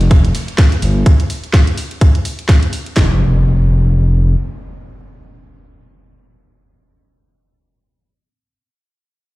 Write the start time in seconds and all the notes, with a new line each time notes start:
Already playing: F1
0.01 snare, closed hi-hat
0.11 kick, closed hi-hat, ride
0.25 closed hi-hat
0.34 snare, open hi-hat, ride
0.48 closed hi-hat
0.58 kick, snare, closed hi-hat, ride
0.72 snare, closed hi-hat
0.82 G1, open hi-hat, ride
1.06 kick, closed hi-hat
1.20 closed hi-hat
1.30 open hi-hat
1.44 closed hi-hat
1.53 kick, snare, closed hi-hat
1.67 closed hi-hat
1.77 open hi-hat
1.91 closed hi-hat
2.01 kick, closed hi-hat
2.15 closed hi-hat
2.25 open hi-hat
2.39 closed hi-hat
2.49 kick, snare, closed hi-hat
2.63 closed hi-hat
2.73 open hi-hat
2.86 closed hi-hat
2.97 F1, kick, snare, clap, impact